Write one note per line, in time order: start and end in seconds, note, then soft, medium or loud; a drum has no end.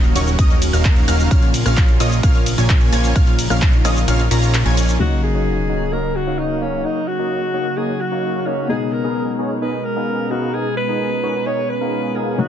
0.00 0.13 D#1 loud
0.00 4.96 C#3 medium
0.00 1.27 F#3 medium
0.00 4.96 A#3 medium
0.00 1.29 C#4 medium
0.00 1.27 F#4 medium
0.04 closed hi-hat soft
0.16 0.36 D#1 medium
0.16 0.29 C#4 medium
0.16 0.29 D#4 medium
0.16 0.29 F#4 medium
0.16 0.29 A#4 medium
0.16 0.29 C#5 loud
0.16 0.29 C#6 loud
0.16 open hi-hat loud
0.16 ride medium
0.16 shaker medium
0.27 closed hi-hat soft
0.27 shaker soft
0.39 0.71 D#1 loud
0.39 0.53 C#4 medium
0.39 0.53 D#4 medium
0.39 0.53 F#4 medium
0.39 0.53 A#4 medium
0.39 0.53 D#5 loud
0.39 0.53 D#6 loud
0.39 kick loud
0.39 closed hi-hat loud
0.39 shaker soft
0.50 closed hi-hat soft
0.62 open hi-hat loud
0.62 ride medium
0.62 shaker medium
0.73 1.06 D#1 medium
0.73 1.05 C#4 medium
0.73 1.05 D#4 medium
0.73 1.05 F#4 medium
0.73 1.05 A#4 medium
0.73 1.05 F5 medium
0.73 1.05 F6 medium
0.73 closed hi-hat soft
0.73 shaker soft
0.85 kick loud
0.85 clap loud
0.85 closed hi-hat medium
0.85 shaker soft
0.96 closed hi-hat soft
1.08 1.29 D#1 loud
1.08 1.28 C#4 loud
1.08 1.28 D#4 medium
1.08 1.28 F#4 medium
1.08 1.28 A#4 medium
1.08 1.28 F5 loud
1.08 1.28 F6 loud
1.08 open hi-hat loud
1.08 ride medium
1.08 shaker medium
1.20 closed hi-hat soft
1.20 shaker soft
1.31 1.63 A#1 loud
1.31 4.97 F3 medium
1.31 1.45 A#3 medium
1.31 1.45 C#4 medium
1.31 1.45 F4 medium
1.31 3.14 F4 medium
1.31 4.97 A#4 medium
1.31 1.45 C#5 medium
1.31 1.45 F5 medium
1.31 1.45 F6 medium
1.31 kick loud
1.31 closed hi-hat loud
1.31 shaker soft
1.43 closed hi-hat soft
1.54 open hi-hat loud
1.54 ride medium
1.54 shaker medium
1.66 1.98 A#1 medium
1.66 1.88 A#3 medium
1.66 1.88 C#4 medium
1.66 1.88 F4 medium
1.66 1.88 C#5 medium
1.66 1.88 F5 loud
1.66 1.88 F6 loud
1.66 cross-stick medium
1.66 closed hi-hat soft
1.66 shaker soft
1.77 kick loud
1.77 clap loud
1.77 closed hi-hat loud
1.77 shaker soft
1.89 closed hi-hat soft
2.00 2.21 A#1 loud
2.00 2.14 A#3 medium
2.00 2.14 C#4 medium
2.00 2.14 F4 medium
2.00 2.14 C#5 medium
2.00 2.14 D#5 loud
2.00 2.14 D#6 loud
2.00 open hi-hat loud
2.00 ride medium
2.00 shaker medium
2.12 closed hi-hat soft
2.12 shaker soft
2.23 2.56 A#1 loud
2.23 2.37 A#3 medium
2.23 2.37 C#4 medium
2.23 2.37 F4 medium
2.23 2.37 C#5 medium
2.23 2.37 F5 loud
2.23 2.37 F6 loud
2.23 kick loud
2.23 closed hi-hat medium
2.23 shaker soft
2.35 closed hi-hat soft
2.46 open hi-hat loud
2.46 ride medium
2.46 shaker medium
2.58 2.90 A#1 loud
2.58 2.90 A#3 medium
2.58 2.90 C#4 medium
2.58 2.90 F4 medium
2.58 2.90 C#5 medium
2.58 2.90 G#5 medium
2.58 2.90 G#6 medium
2.58 closed hi-hat soft
2.58 shaker soft
2.69 kick loud
2.69 clap loud
2.69 closed hi-hat medium
2.69 shaker soft
2.81 closed hi-hat soft
2.92 3.13 A#1 loud
2.92 3.12 A#3 loud
2.92 3.12 C#4 medium
2.92 3.12 F4 medium
2.92 3.12 C#5 medium
2.92 3.12 G#5 loud
2.92 3.12 G#6 loud
2.92 open hi-hat loud
2.92 ride medium
2.92 shaker medium
3.04 closed hi-hat soft
3.04 shaker soft
3.16 3.48 A#1 medium
3.16 3.29 A#3 medium
3.16 3.29 C#4 medium
3.16 4.98 D#4 medium
3.16 3.29 F4 medium
3.16 3.29 C#5 medium
3.16 3.29 F5 medium
3.16 3.29 F6 medium
3.16 kick loud
3.16 closed hi-hat loud
3.16 shaker soft
3.27 closed hi-hat soft
3.39 open hi-hat loud
3.39 ride medium
3.39 shaker medium
3.50 3.83 A#1 medium
3.50 3.72 A#3 medium
3.50 3.72 C#4 medium
3.50 3.72 F4 medium
3.50 3.72 C#5 medium
3.50 3.72 F5 loud
3.50 3.72 F6 loud
3.50 cross-stick medium
3.50 closed hi-hat soft
3.50 shaker soft
3.62 kick loud
3.62 clap loud
3.62 closed hi-hat medium
3.62 shaker soft
3.73 closed hi-hat soft
3.85 4.06 A#1 loud
3.85 3.99 A#3 medium
3.85 3.99 C#4 medium
3.85 3.99 F4 medium
3.85 3.99 C#5 medium
3.85 3.99 D#5 loud
3.85 3.99 D#6 loud
3.85 cross-stick medium
3.85 open hi-hat loud
3.85 ride medium
3.85 shaker medium
3.96 closed hi-hat soft
3.96 shaker soft
4.08 4.29 A#1 loud
4.08 4.22 A#3 medium
4.08 4.22 C#4 medium
4.08 4.22 F4 medium
4.08 4.22 C#5 medium
4.08 4.22 F5 loud
4.08 4.22 F6 loud
4.08 closed hi-hat loud
4.08 shaker soft
4.20 closed hi-hat soft
4.31 4.63 A#1 loud
4.31 4.63 A#3 medium
4.31 4.63 C#4 medium
4.31 4.63 F4 medium
4.31 4.63 C#5 medium
4.31 4.63 A#5 loud
4.31 4.63 A#6 loud
4.31 open hi-hat loud
4.31 ride medium
4.31 shaker medium
4.43 closed hi-hat soft
4.43 shaker soft
4.54 clap loud
4.54 closed hi-hat loud
4.54 shaker soft
4.66 4.98 A#1 loud
4.66 4.97 A#3 medium
4.66 4.97 C#4 medium
4.66 4.97 F4 medium
4.66 4.97 C#5 medium
4.66 4.97 G#5 medium
4.66 4.98 G#6 medium
4.66 closed hi-hat soft
4.77 open hi-hat loud
4.77 ride medium
4.77 shaker medium
4.89 closed hi-hat soft
4.89 shaker soft
4.99 8.66 C#3 medium
4.99 8.67 F#3 medium
4.99 8.66 F#3 medium
4.99 5.14 A#3 medium
4.99 8.67 A#3 medium
4.99 12.48 C#4 medium
4.99 10.50 D#4 medium
4.99 5.14 D#4 medium
4.99 8.67 D#4 medium
4.99 5.14 F#4 medium
4.99 5.22 F#4 loud
4.99 6.83 A#4 medium
4.99 5.14 C#5 medium
4.99 5.14 D#5 medium
4.99 sub drop medium
5.23 5.94 G#4 loud
5.35 5.57 A#3 medium
5.35 5.57 D#4 medium
5.35 5.57 F#4 medium
5.35 5.57 C#5 medium
5.35 5.57 D#5 medium
5.69 5.83 A#3 medium
5.69 5.83 D#4 medium
5.69 5.83 F#4 medium
5.69 5.83 C#5 medium
5.69 5.83 D#5 medium
5.93 6.06 A#3 medium
5.93 6.06 D#4 medium
5.93 6.06 F#4 medium
5.93 6.17 A#4 loud
5.93 6.06 C#5 medium
5.93 6.06 D#5 loud
6.16 6.40 F#4 loud
6.27 6.59 A#3 medium
6.27 6.59 D#4 medium
6.27 6.59 F#4 medium
6.27 6.59 C#5 medium
6.27 6.59 F5 medium
6.39 6.63 D#4 medium
6.62 6.81 A#3 medium
6.62 6.86 C#4 medium
6.62 6.81 D#4 medium
6.62 6.81 F#4 medium
6.62 6.81 C#5 medium
6.62 6.81 F5 loud
6.85 6.99 A#3 medium
6.85 6.99 D#4 medium
6.85 7.10 D#4 medium
6.85 6.99 F#4 medium
6.85 12.35 G#4 medium
6.85 6.99 C#5 medium
6.85 6.99 D#5 medium
7.08 7.79 F#4 loud
7.19 7.42 A#3 medium
7.19 7.42 D#4 medium
7.19 7.42 F#4 medium
7.19 7.42 C#5 medium
7.19 7.42 D#5 medium
7.54 7.68 A#3 medium
7.54 7.68 D#4 medium
7.54 7.68 F#4 medium
7.54 7.68 C#5 medium
7.54 7.68 D#5 medium
7.77 7.91 A#3 medium
7.77 7.91 D#4 medium
7.77 7.91 F#4 medium
7.77 8.02 G#4 medium
7.77 7.91 C#5 medium
7.77 7.91 D#5 medium
8.00 8.48 F#4 loud
8.12 8.44 A#3 medium
8.12 8.44 D#4 medium
8.12 8.44 F#4 medium
8.12 8.44 C#5 medium
8.12 8.44 F5 medium
8.46 8.66 A#3 medium
8.46 8.69 C#4 medium
8.46 8.66 D#4 medium
8.46 8.66 F#4 medium
8.46 8.66 C#5 medium
8.46 8.66 F5 loud
8.68 12.35 B2 medium
8.68 12.36 G#3 medium
8.68 12.35 G#3 medium
8.68 8.83 B3 medium
8.68 12.36 B3 medium
8.68 8.83 D#4 medium
8.68 12.37 D#4 medium
8.68 8.94 G#4 loud
8.68 8.83 G#4 medium
8.68 8.83 A#4 medium
8.68 8.83 D#5 medium
8.93 9.35 A#4 medium
9.04 9.26 B3 medium
9.04 9.26 D#4 medium
9.04 9.26 G#4 medium
9.04 9.26 A#4 medium
9.04 9.26 D#5 medium
9.39 9.53 B3 medium
9.39 9.53 D#4 medium
9.39 9.53 G#4 medium
9.39 9.53 A#4 medium
9.39 9.53 C#5 loud
9.62 9.76 B3 medium
9.62 9.76 D#4 medium
9.62 9.76 G#4 medium
9.62 9.76 A#4 medium
9.62 9.86 B4 medium
9.62 9.76 D#5 medium
9.85 10.32 A#4 loud
9.96 10.28 B3 medium
9.96 10.28 D#4 medium
9.96 10.28 G#4 medium
9.96 10.28 A#4 medium
9.96 10.28 F5 medium
10.31 10.51 B3 loud
10.31 10.51 D#4 medium
10.31 10.56 F#4 medium
10.31 10.51 G#4 medium
10.31 10.51 A#4 medium
10.31 10.51 F5 loud
10.54 10.68 B3 medium
10.54 10.68 D#4 medium
10.54 12.37 F4 medium
10.54 10.68 G#4 medium
10.54 10.76 G#4 loud
10.54 10.68 A#4 medium
10.54 10.68 D#5 medium
10.77 11.48 B4 loud
10.89 11.11 B3 medium
10.89 11.11 D#4 medium
10.89 11.11 G#4 medium
10.89 11.11 A#4 medium
10.89 11.11 D#5 loud
11.23 11.37 B3 medium
11.23 11.37 D#4 medium
11.23 11.37 G#4 medium
11.23 11.37 A#4 medium
11.23 11.37 C#5 loud
11.46 11.60 B3 medium
11.46 11.60 D#4 medium
11.46 11.60 G#4 medium
11.46 11.60 A#4 medium
11.46 11.71 C#5 loud
11.46 11.60 D#5 loud
11.69 12.17 B4 loud
11.81 12.13 B3 medium
11.81 12.13 D#4 medium
11.81 12.13 G#4 medium
11.81 12.13 A#4 medium
11.81 12.13 F5 medium
12.15 12.35 B3 medium
12.15 12.35 D#4 medium
12.15 12.35 G#4 medium
12.15 12.40 G#4 medium
12.15 12.35 A#4 medium
12.15 12.35 F5 loud
12.38 12.48 C#3 medium
12.38 12.48 F#3 medium
12.38 12.48 A#3 medium
12.38 12.48 D#4 medium
12.38 12.48 F#4 medium
12.38 12.48 C#5 medium
12.38 12.48 D#5 medium